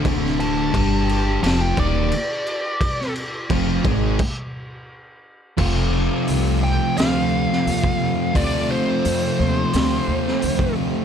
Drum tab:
CC |x-x-x-x-x-x-x-x-|x-x-x-x-x-------|x---------------|----------------|
HH |----------------|----------------|----o---o---o---|o---o---o---o---|
SD |-o------o-------|-o--------------|--------o--o----|--------o--o----|
BD |o---o-----o-----|o---o-o-o-------|o------------o--|o------------o--|